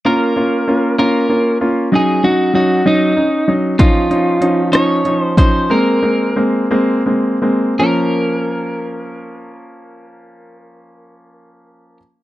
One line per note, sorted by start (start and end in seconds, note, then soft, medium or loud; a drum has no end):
0.05 0.31 A#3 medium
0.05 0.31 C#4 medium
0.05 0.31 F4 medium
0.05 0.95 A#4 medium
0.36 0.62 A#3 soft
0.36 0.62 C#4 soft
0.36 0.63 F4 medium
0.68 0.94 A#3 soft
0.68 0.94 C#4 soft
0.68 0.94 F4 medium
0.98 1.25 A#3 medium
0.98 1.25 C#4 medium
0.98 1.25 F4 medium
0.98 1.57 A#4 medium
1.29 1.56 A#3 medium
1.29 1.56 C#4 soft
1.29 1.56 F4 medium
1.61 1.87 A#3 medium
1.61 1.87 C#4 soft
1.61 1.87 F4 medium
1.92 2.18 F#3 medium
1.92 2.18 C#4 medium
1.92 2.18 D#4 medium
1.92 2.23 G#4 medium
2.23 2.49 F#3 medium
2.23 2.49 C#4 soft
2.23 2.49 D#4 medium
2.23 2.54 F#4 medium
2.54 2.80 F#3 medium
2.54 2.80 C#4 soft
2.54 2.80 D#4 medium
2.54 2.87 F#4 medium
2.86 3.12 F#3 medium
2.86 3.12 C#4 medium
2.86 3.12 D#4 medium
2.86 3.53 D#4 medium
3.17 3.43 C#4 soft
3.17 3.43 D#4 medium
3.48 3.74 F#3 medium
3.48 3.74 C#4 soft
3.48 3.74 D#4 medium
3.79 4.05 F3 medium
3.79 4.05 C#4 medium
3.79 4.05 D#4 medium
3.79 4.70 F4 medium
3.79 kick medium
3.79 closed hi-hat medium
4.10 4.36 F3 medium
4.10 4.37 C#4 medium
4.10 4.37 D#4 medium
4.10 closed hi-hat soft
4.41 4.67 F3 medium
4.41 4.68 C#4 medium
4.41 4.68 D#4 medium
4.41 closed hi-hat medium
4.72 4.99 F3 medium
4.72 4.99 C#4 medium
4.72 5.00 D#4 medium
4.72 5.20 C#5 medium
4.72 cross-stick medium
4.72 closed hi-hat medium
5.05 5.32 F3 medium
5.05 5.32 C#4 soft
5.05 5.32 D#4 medium
5.05 closed hi-hat soft
5.20 5.38 C5 medium
5.37 5.65 F3 medium
5.37 5.65 C#4 medium
5.37 5.65 D#4 medium
5.37 5.72 C5 medium
5.37 kick medium
5.37 closed hi-hat medium
5.70 5.98 G#3 medium
5.70 5.98 A#3 medium
5.70 5.98 C4 medium
5.70 6.42 A#4 medium
6.02 6.31 G#3 medium
6.02 6.31 A#3 soft
6.02 6.31 C4 medium
6.36 6.65 G#3 medium
6.36 6.66 A#3 soft
6.36 6.65 C4 medium
6.71 7.00 G#3 medium
6.71 7.00 A#3 medium
6.71 7.01 C4 medium
7.06 7.36 G#3 medium
7.06 7.37 A#3 soft
7.06 7.37 C4 medium
7.42 7.73 G#3 medium
7.42 7.73 A#3 soft
7.42 7.73 C4 medium
7.79 11.97 F3 medium
7.79 11.97 A#3 medium
7.79 11.98 C#4 medium
7.79 11.97 A#4 medium